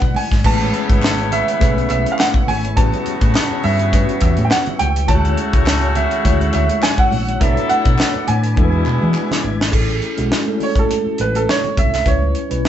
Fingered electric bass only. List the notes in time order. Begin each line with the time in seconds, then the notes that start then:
0.02 B1
0.32 G#1
0.45 A1
0.90 G#1
1.62 B1
1.90 B1
2.49 G#1
2.77 A1
3.07 muted fingered electric bass stroke
3.22 A2
3.51 muted fingered electric bass stroke
3.64 G2
4.22 E2
4.38 A2
4.80 C#2
5.09 D2
5.53 C#2
6.25 D2
6.54 D2
7.12 A#1
7.41 B1
7.71 muted fingered electric bass stroke
7.86 B2
8.16 muted fingered electric bass stroke
8.29 A2
8.58 E2
8.87 B2
9.03 E3
9.45 G#1
9.73 A1
10.19 B1
11.06 muted fingered electric bass stroke
11.20 A1
11.78 C2
12.06 C#2
12.51 B1